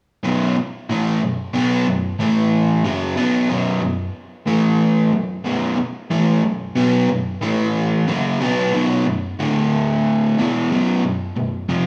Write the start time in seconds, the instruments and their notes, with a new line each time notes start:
0.24 overdriven electric guitar B1 F#2 B2
0.57 muted overdriven electric guitar stroke
0.90 overdriven electric guitar A2 E3 A3
1.22 overdriven electric guitar B1 F#2
1.54 overdriven electric guitar B2 F#3 B3
1.87 overdriven electric guitar B1 F#2
2.19 overdriven electric guitar A2 E3 A3
2.84 overdriven electric guitar F#2 C#3 F#3
3.16 overdriven electric guitar B2 F#3 B3
3.49 overdriven electric guitar B1 F#2 B2
3.81 overdriven electric guitar B1 F#2
4.46 overdriven electric guitar A2 E3 A3
5.13 overdriven electric guitar B1 F#2
5.45 overdriven electric guitar B1 F#2 B2
5.78 muted overdriven electric guitar stroke
6.11 overdriven electric guitar A2 E3 A3
6.43 overdriven electric guitar B1 F#2
6.75 overdriven electric guitar B2 F#3 B3
7.08 overdriven electric guitar B1 F#2
7.41 overdriven electric guitar A2 E3 A3
8.08 overdriven electric guitar F#2 C#3 F#3
8.40 overdriven electric guitar B2 F#3 B3
8.73 overdriven electric guitar B1 F#2 B2
9.06 overdriven electric guitar B1 F#2
9.39 overdriven electric guitar D2 A2 D3
10.38 overdriven electric guitar E2 B2 E3
10.71 overdriven electric guitar B1 F#2 B2
11.04 overdriven electric guitar B1 F#2
11.36 overdriven electric guitar B1 F#2
11.69 overdriven electric guitar F2 C3 F3